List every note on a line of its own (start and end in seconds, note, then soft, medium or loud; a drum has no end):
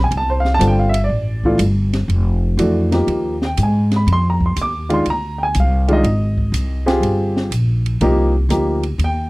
0.00 0.10 B1 medium
0.00 0.12 G#5 medium
0.11 0.59 C2 loud
0.11 ride medium
0.17 0.31 A5 loud
0.30 0.46 C5 medium
0.40 0.50 F5 loud
0.45 snare soft
0.54 0.62 A5 loud
0.59 1.08 G1 loud
0.59 0.91 D3 medium
0.59 0.91 G3 medium
0.59 0.91 C4 medium
0.59 0.91 F4 medium
0.59 hi-hat pedal medium
0.59 ride medium
0.67 0.81 G5 medium
0.79 0.95 F5 medium
0.89 1.00 E5 medium
0.94 ride medium
1.04 1.49 D5 medium
1.09 1.57 A1 medium
1.44 1.59 E3 medium
1.44 1.59 A3 medium
1.44 1.59 D4 medium
1.44 1.59 F4 medium
1.44 kick soft
1.58 2.07 G1 loud
1.58 hi-hat pedal medium
1.58 ride medium
1.93 snare soft
1.93 ride soft
2.08 2.56 F1 medium
2.08 ride medium
2.57 3.06 F2 medium
2.57 2.89 E3 medium
2.57 2.89 A3 medium
2.57 2.89 D4 medium
2.57 2.89 F#4 medium
2.57 hi-hat pedal soft
2.57 ride medium
2.91 3.34 F3 medium
2.91 3.35 A#3 medium
2.91 3.35 D#4 medium
2.91 3.35 G4 medium
2.91 snare soft
2.91 ride medium
3.07 3.55 D#2 medium
3.07 ride medium
3.42 3.59 G5 medium
3.42 snare soft
3.57 4.05 G#2 loud
3.57 hi-hat pedal medium
3.57 ride medium
3.63 3.93 G#5 medium
3.91 snare soft
3.91 ride soft
3.96 4.09 B5 medium
4.07 4.54 F2 medium
4.07 ride medium
4.13 4.26 C6 loud
4.30 4.42 A#5 medium
4.40 kick medium
4.46 4.59 C6 medium
4.56 5.04 D#2 medium
4.56 hi-hat pedal medium
4.56 ride medium
4.62 4.91 D6 loud
4.89 5.04 D#3 medium
4.89 5.04 G#3 medium
4.89 5.04 D4 medium
4.89 5.04 F4 medium
4.89 ride medium
4.94 5.07 C6 medium
5.06 5.53 D2 medium
5.06 ride medium
5.10 5.40 A#5 loud
5.38 5.40 G5 medium
5.43 5.56 G#5 medium
5.54 6.03 C2 loud
5.54 hi-hat pedal medium
5.54 ride medium
5.60 5.90 F5 medium
5.88 6.02 D#3 medium
5.88 6.02 G#3 medium
5.88 6.02 D4 medium
5.88 6.03 F4 medium
5.88 ride soft
5.93 7.01 D#5 medium
6.03 6.51 G#1 loud
6.03 ride medium
6.38 kick medium
6.52 7.00 C2 medium
6.52 hi-hat pedal medium
6.52 ride medium
6.86 7.48 C4 medium
6.86 7.49 F4 medium
6.86 7.48 G4 medium
6.86 7.48 G#4 medium
6.86 snare medium
6.86 ride soft
7.00 7.49 G1 medium
7.00 ride medium
7.37 snare soft
7.51 7.99 A#1 medium
7.51 hi-hat pedal medium
7.51 ride medium
7.86 ride soft
8.01 8.48 C2 loud
8.01 8.31 F3 medium
8.01 8.31 A#3 medium
8.01 8.31 D#4 medium
8.01 8.31 G4 medium
8.01 ride medium
8.49 8.97 D2 medium
8.49 8.80 F3 medium
8.49 8.80 A#3 medium
8.49 8.80 D#4 medium
8.49 8.80 G4 medium
8.49 hi-hat pedal medium
8.49 ride medium
8.83 ride medium
8.98 9.30 D#2 medium
8.98 ride medium
9.04 9.30 G5 medium